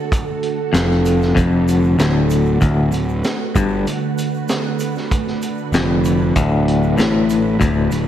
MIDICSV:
0, 0, Header, 1, 5, 480
1, 0, Start_track
1, 0, Tempo, 625000
1, 86, Time_signature, 4, 2, 24, 8
1, 6204, End_track
2, 0, Start_track
2, 0, Title_t, "String machine"
2, 0, Program_c, 0, 50
2, 0, Note_on_c, 0, 50, 83
2, 0, Note_on_c, 0, 57, 75
2, 0, Note_on_c, 0, 66, 70
2, 0, Note_on_c, 0, 69, 93
2, 1980, Note_off_c, 0, 69, 0
2, 1995, Note_on_c, 0, 71, 86
2, 6204, Note_off_c, 0, 50, 0
2, 6204, Note_off_c, 0, 57, 0
2, 6204, Note_off_c, 0, 66, 0
2, 6204, Note_off_c, 0, 71, 0
2, 6204, End_track
3, 0, Start_track
3, 0, Title_t, "Clean electric guitar"
3, 0, Program_c, 1, 27
3, 559, Note_on_c, 1, 41, 82
3, 1028, Note_off_c, 1, 41, 0
3, 1038, Note_on_c, 1, 41, 110
3, 1514, Note_off_c, 1, 41, 0
3, 1526, Note_on_c, 1, 38, 96
3, 1994, Note_off_c, 1, 38, 0
3, 2003, Note_on_c, 1, 38, 98
3, 2237, Note_off_c, 1, 38, 0
3, 2247, Note_on_c, 1, 38, 66
3, 2438, Note_off_c, 1, 38, 0
3, 2733, Note_on_c, 1, 43, 113
3, 2962, Note_off_c, 1, 43, 0
3, 4410, Note_on_c, 1, 41, 86
3, 4880, Note_off_c, 1, 41, 0
3, 4885, Note_on_c, 1, 38, 116
3, 5356, Note_off_c, 1, 38, 0
3, 5359, Note_on_c, 1, 45, 96
3, 5831, Note_off_c, 1, 45, 0
3, 5834, Note_on_c, 1, 38, 104
3, 6072, Note_off_c, 1, 38, 0
3, 6086, Note_on_c, 1, 38, 64
3, 6204, Note_off_c, 1, 38, 0
3, 6204, End_track
4, 0, Start_track
4, 0, Title_t, "Picked electric bass"
4, 0, Program_c, 2, 34
4, 568, Note_on_c, 2, 29, 92
4, 1016, Note_off_c, 2, 29, 0
4, 1052, Note_on_c, 2, 29, 88
4, 1498, Note_off_c, 2, 29, 0
4, 1526, Note_on_c, 2, 26, 99
4, 1975, Note_off_c, 2, 26, 0
4, 2009, Note_on_c, 2, 26, 95
4, 2230, Note_off_c, 2, 26, 0
4, 2247, Note_on_c, 2, 26, 81
4, 2469, Note_off_c, 2, 26, 0
4, 2729, Note_on_c, 2, 31, 97
4, 2950, Note_off_c, 2, 31, 0
4, 4395, Note_on_c, 2, 29, 89
4, 4850, Note_off_c, 2, 29, 0
4, 4887, Note_on_c, 2, 26, 93
4, 5336, Note_off_c, 2, 26, 0
4, 5356, Note_on_c, 2, 33, 95
4, 5810, Note_off_c, 2, 33, 0
4, 5843, Note_on_c, 2, 26, 97
4, 6067, Note_off_c, 2, 26, 0
4, 6077, Note_on_c, 2, 26, 77
4, 6204, Note_off_c, 2, 26, 0
4, 6204, End_track
5, 0, Start_track
5, 0, Title_t, "Drums"
5, 91, Note_on_c, 9, 36, 102
5, 95, Note_on_c, 9, 42, 92
5, 96, Note_on_c, 9, 82, 71
5, 168, Note_off_c, 9, 36, 0
5, 172, Note_off_c, 9, 42, 0
5, 173, Note_off_c, 9, 82, 0
5, 328, Note_on_c, 9, 42, 59
5, 405, Note_off_c, 9, 42, 0
5, 569, Note_on_c, 9, 42, 92
5, 573, Note_on_c, 9, 38, 109
5, 573, Note_on_c, 9, 82, 69
5, 646, Note_off_c, 9, 42, 0
5, 650, Note_off_c, 9, 38, 0
5, 650, Note_off_c, 9, 82, 0
5, 697, Note_on_c, 9, 38, 34
5, 774, Note_off_c, 9, 38, 0
5, 811, Note_on_c, 9, 82, 78
5, 813, Note_on_c, 9, 42, 70
5, 888, Note_off_c, 9, 82, 0
5, 890, Note_off_c, 9, 42, 0
5, 936, Note_on_c, 9, 82, 27
5, 938, Note_on_c, 9, 38, 33
5, 1013, Note_off_c, 9, 82, 0
5, 1014, Note_off_c, 9, 38, 0
5, 1051, Note_on_c, 9, 36, 100
5, 1053, Note_on_c, 9, 42, 87
5, 1053, Note_on_c, 9, 82, 68
5, 1128, Note_off_c, 9, 36, 0
5, 1129, Note_off_c, 9, 42, 0
5, 1130, Note_off_c, 9, 82, 0
5, 1291, Note_on_c, 9, 82, 92
5, 1294, Note_on_c, 9, 42, 66
5, 1368, Note_off_c, 9, 82, 0
5, 1371, Note_off_c, 9, 42, 0
5, 1411, Note_on_c, 9, 82, 26
5, 1487, Note_off_c, 9, 82, 0
5, 1530, Note_on_c, 9, 82, 75
5, 1531, Note_on_c, 9, 42, 88
5, 1535, Note_on_c, 9, 38, 110
5, 1607, Note_off_c, 9, 82, 0
5, 1608, Note_off_c, 9, 42, 0
5, 1612, Note_off_c, 9, 38, 0
5, 1765, Note_on_c, 9, 82, 99
5, 1774, Note_on_c, 9, 42, 65
5, 1842, Note_off_c, 9, 82, 0
5, 1851, Note_off_c, 9, 42, 0
5, 1885, Note_on_c, 9, 82, 24
5, 1962, Note_off_c, 9, 82, 0
5, 2006, Note_on_c, 9, 82, 63
5, 2011, Note_on_c, 9, 36, 98
5, 2014, Note_on_c, 9, 42, 83
5, 2082, Note_off_c, 9, 82, 0
5, 2088, Note_off_c, 9, 36, 0
5, 2090, Note_off_c, 9, 42, 0
5, 2241, Note_on_c, 9, 82, 82
5, 2256, Note_on_c, 9, 42, 63
5, 2318, Note_off_c, 9, 82, 0
5, 2333, Note_off_c, 9, 42, 0
5, 2371, Note_on_c, 9, 82, 29
5, 2448, Note_off_c, 9, 82, 0
5, 2487, Note_on_c, 9, 82, 70
5, 2490, Note_on_c, 9, 42, 86
5, 2494, Note_on_c, 9, 38, 97
5, 2564, Note_off_c, 9, 82, 0
5, 2567, Note_off_c, 9, 42, 0
5, 2571, Note_off_c, 9, 38, 0
5, 2731, Note_on_c, 9, 36, 103
5, 2731, Note_on_c, 9, 82, 93
5, 2735, Note_on_c, 9, 42, 74
5, 2808, Note_off_c, 9, 36, 0
5, 2808, Note_off_c, 9, 82, 0
5, 2812, Note_off_c, 9, 42, 0
5, 2972, Note_on_c, 9, 42, 89
5, 2973, Note_on_c, 9, 82, 75
5, 3049, Note_off_c, 9, 42, 0
5, 3050, Note_off_c, 9, 82, 0
5, 3210, Note_on_c, 9, 82, 106
5, 3213, Note_on_c, 9, 42, 68
5, 3287, Note_off_c, 9, 82, 0
5, 3289, Note_off_c, 9, 42, 0
5, 3337, Note_on_c, 9, 82, 28
5, 3414, Note_off_c, 9, 82, 0
5, 3442, Note_on_c, 9, 82, 82
5, 3448, Note_on_c, 9, 42, 100
5, 3452, Note_on_c, 9, 38, 101
5, 3519, Note_off_c, 9, 82, 0
5, 3525, Note_off_c, 9, 42, 0
5, 3528, Note_off_c, 9, 38, 0
5, 3679, Note_on_c, 9, 82, 102
5, 3689, Note_on_c, 9, 42, 69
5, 3756, Note_off_c, 9, 82, 0
5, 3765, Note_off_c, 9, 42, 0
5, 3805, Note_on_c, 9, 82, 28
5, 3816, Note_on_c, 9, 38, 37
5, 3882, Note_off_c, 9, 82, 0
5, 3893, Note_off_c, 9, 38, 0
5, 3927, Note_on_c, 9, 36, 95
5, 3928, Note_on_c, 9, 42, 94
5, 3928, Note_on_c, 9, 82, 84
5, 4004, Note_off_c, 9, 36, 0
5, 4005, Note_off_c, 9, 42, 0
5, 4005, Note_off_c, 9, 82, 0
5, 4050, Note_on_c, 9, 38, 29
5, 4127, Note_off_c, 9, 38, 0
5, 4164, Note_on_c, 9, 82, 98
5, 4166, Note_on_c, 9, 42, 61
5, 4241, Note_off_c, 9, 82, 0
5, 4243, Note_off_c, 9, 42, 0
5, 4282, Note_on_c, 9, 82, 26
5, 4359, Note_off_c, 9, 82, 0
5, 4400, Note_on_c, 9, 82, 71
5, 4406, Note_on_c, 9, 42, 99
5, 4410, Note_on_c, 9, 38, 95
5, 4477, Note_off_c, 9, 82, 0
5, 4483, Note_off_c, 9, 42, 0
5, 4487, Note_off_c, 9, 38, 0
5, 4642, Note_on_c, 9, 82, 94
5, 4650, Note_on_c, 9, 42, 77
5, 4719, Note_off_c, 9, 82, 0
5, 4727, Note_off_c, 9, 42, 0
5, 4881, Note_on_c, 9, 42, 97
5, 4885, Note_on_c, 9, 36, 97
5, 4886, Note_on_c, 9, 82, 81
5, 4958, Note_off_c, 9, 42, 0
5, 4961, Note_off_c, 9, 36, 0
5, 4963, Note_off_c, 9, 82, 0
5, 5130, Note_on_c, 9, 42, 68
5, 5207, Note_off_c, 9, 42, 0
5, 5245, Note_on_c, 9, 82, 28
5, 5322, Note_off_c, 9, 82, 0
5, 5360, Note_on_c, 9, 82, 80
5, 5371, Note_on_c, 9, 42, 97
5, 5374, Note_on_c, 9, 38, 113
5, 5437, Note_off_c, 9, 82, 0
5, 5447, Note_off_c, 9, 42, 0
5, 5451, Note_off_c, 9, 38, 0
5, 5604, Note_on_c, 9, 82, 93
5, 5609, Note_on_c, 9, 42, 68
5, 5681, Note_off_c, 9, 82, 0
5, 5686, Note_off_c, 9, 42, 0
5, 5844, Note_on_c, 9, 36, 95
5, 5844, Note_on_c, 9, 82, 80
5, 5845, Note_on_c, 9, 42, 89
5, 5920, Note_off_c, 9, 36, 0
5, 5921, Note_off_c, 9, 42, 0
5, 5921, Note_off_c, 9, 82, 0
5, 6078, Note_on_c, 9, 82, 91
5, 6084, Note_on_c, 9, 42, 63
5, 6155, Note_off_c, 9, 82, 0
5, 6161, Note_off_c, 9, 42, 0
5, 6204, End_track
0, 0, End_of_file